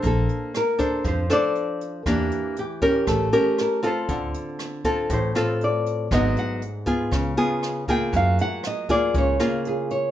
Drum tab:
HH |xxxxxxxx|xxxxxxxx|xxxxxxxx|xxxxxxxx|
SD |--r--r--|r---r-r-|--r--r--|r---r-r-|
BD |o--oo---|o--oo---|o--oo---|o--oo--o|

HH |xxxxxxxx|
SD |--r--r--|
BD |o--oo---|